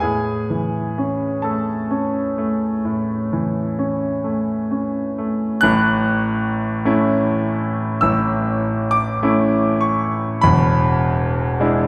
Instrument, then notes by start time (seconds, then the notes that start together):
grand piano
0.00 A2 G#4 G#5
0.50 E3
0.98 C#4
1.42 A3 A4 A5
1.91 C#4
2.38 A3
2.85 A2
3.33 E3
3.79 C#4
4.24 A3
4.71 C#4
5.18 A3
5.61 A1 A2 F#6
6.85 A3 C#4 E4
8.01 A1 A2 E6
8.91 D6
9.23 A3 C#4 E4
9.81 C#6
10.41 E1 E2 B5
11.60 G#3 D4 E4